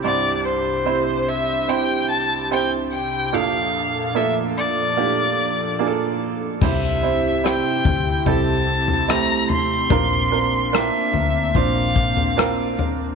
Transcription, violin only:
\new Staff \with { instrumentName = "Violin" } { \time 4/4 \key c \mixolydian \tempo 4 = 73 d''8 c''4 e''8 g''8 a''8 g''8 g''8 | f''4 e''8 d''2 r8 | e''4 g''4 a''4 bes''8 c'''8~ | c'''4 e''4 f''4. r8 | }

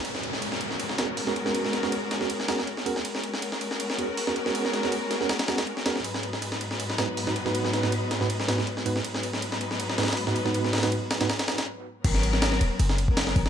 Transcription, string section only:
\new Staff \with { instrumentName = "String section" } { \time 4/4 \key gis \minor \tempo 4 = 160 <gis b cis' fis' ais'>1~ | <gis b cis' fis' ais'>1 | <gis b cis' fis' ais'>1~ | <gis b cis' fis' ais'>1 |
<gis, fis b dis' b'>1~ | <gis, fis b dis' b'>1 | <gis, fis b dis' b'>1~ | <gis, fis b dis' b'>2. r4 |
<fis b cis' ais'>2~ <fis b cis' ais'>8 r16 <fis b cis' ais'>4~ <fis b cis' ais'>16 | }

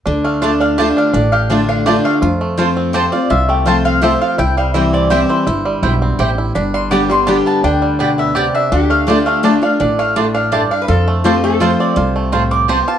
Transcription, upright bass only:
\new Staff \with { instrumentName = "Upright bass" } { \clef bass \time 3/4 \key d \dorian \tempo 4 = 166 d,2. | a,,2. | f,2. | c,2. |
c,2. | g,,4 b,,4 a,,4 | g,,2. | d,2. |
d,2. | a,,2. | f,2. | c,2. | }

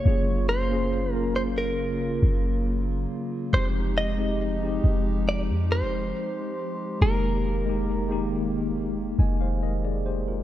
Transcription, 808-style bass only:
\new Staff \with { instrumentName = "808-style bass" } { \clef bass \time 4/4 \key f \minor \tempo 4 = 69 ges,,2~ ges,,8 ges,,4 r8 | f,,4. f,,8. f,16. f,,16. r4 | f,,2~ f,,8 f,,4. | }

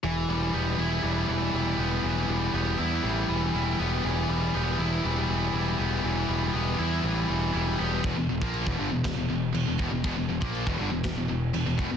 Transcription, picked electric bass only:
\new Staff \with { instrumentName = "Picked electric bass" } { \clef bass \time 4/4 \key e \minor \tempo 4 = 120 e,,8 e,,8 e,,8 e,,8 e,,8 e,,8 e,,8 e,,8 | e,,8 e,,8 e,,8 e,8 a,,8 e,,8 e,,8 e,,8 | e,,8 e,,8 e,,8 e,,8 e,,8 e,,8 e,,8 e,,8 | e,,8 e,,8 e,,8 e,8 a,,8 e,,8 e,,8 e,,8 |
e,,16 e,,16 e,,16 ais,,8 e,,16 g,,16 e,,16 e,,16 e,,16 e,,8 e,,16 e,,16 e,,16 e,,16 | e,,16 e,,16 e,,16 ais,,8 e,,16 g,,16 e,,16 e,,16 e,,16 e,,8 e,,16 e,,16 e,,16 e,,16 | }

